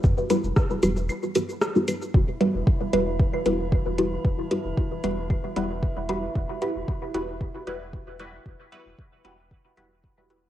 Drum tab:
HH |--x---x---x---x-|--x---x---x---x-|--x---x---x---x-|--x---x---x---x-|
SH |xxxxxxxxxxxxxxxx|----------------|----------------|----------------|
CL |------x-x-----x-|------x--x------|------x-x-----x-|----------------|
SD |----r-------r---|----------------|----------------|----------------|
T2 |o---------------|----------------|----------------|----------------|
BD |o---o-----------|o---o---o---o---|o---o---o---o---|o---o---o---o---|

HH |--x---x---x---x-|
SH |----------------|
CL |----------------|
SD |----------------|
T2 |----------------|
BD |o---o---o---o---|